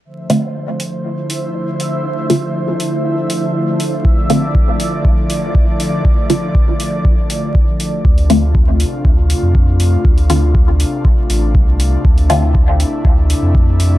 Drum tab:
HH |--o---o---o---o-|--o---o---o---o-|--o---o---o---o-|--o---o---o---o-|
BD |----------------|----------------|o---o---o---o---|o---o---o---o---|

HH |-oo---o---o---o-|-oo---o---o---o-|-oo---o---o---o-|
BD |o---o---o---o---|o---o---o---o---|o---o---o---o---|